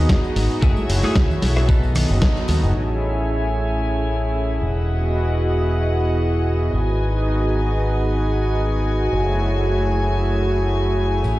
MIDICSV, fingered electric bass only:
0, 0, Header, 1, 3, 480
1, 0, Start_track
1, 0, Tempo, 530973
1, 570, Time_signature, 4, 2, 24, 8
1, 10298, End_track
2, 0, Start_track
2, 0, Title_t, "Fingered electric bass"
2, 0, Program_c, 0, 33
2, 322, Note_on_c, 0, 32, 84
2, 421, Note_off_c, 0, 32, 0
2, 564, Note_on_c, 0, 30, 95
2, 661, Note_off_c, 0, 30, 0
2, 806, Note_on_c, 0, 30, 98
2, 902, Note_off_c, 0, 30, 0
2, 1044, Note_on_c, 0, 37, 89
2, 1141, Note_off_c, 0, 37, 0
2, 1287, Note_on_c, 0, 35, 89
2, 1840, Note_off_c, 0, 35, 0
2, 1900, Note_on_c, 0, 30, 93
2, 1978, Note_off_c, 0, 30, 0
2, 2247, Note_on_c, 0, 39, 82
2, 2343, Note_off_c, 0, 39, 0
2, 2379, Note_on_c, 0, 30, 97
2, 2458, Note_off_c, 0, 30, 0
2, 2490, Note_on_c, 0, 33, 78
2, 4148, Note_off_c, 0, 33, 0
2, 4169, Note_on_c, 0, 28, 75
2, 6067, Note_off_c, 0, 28, 0
2, 6084, Note_on_c, 0, 32, 78
2, 8225, Note_off_c, 0, 32, 0
2, 8247, Note_on_c, 0, 30, 78
2, 10147, Note_off_c, 0, 30, 0
2, 10165, Note_on_c, 0, 33, 76
2, 10298, Note_off_c, 0, 33, 0
2, 10298, End_track
3, 0, Start_track
3, 0, Title_t, "Muted fingered electric bass strokes"
3, 939, Note_on_c, 9, 29, 43
3, 1029, Note_off_c, 9, 29, 0
3, 10298, End_track
0, 0, End_of_file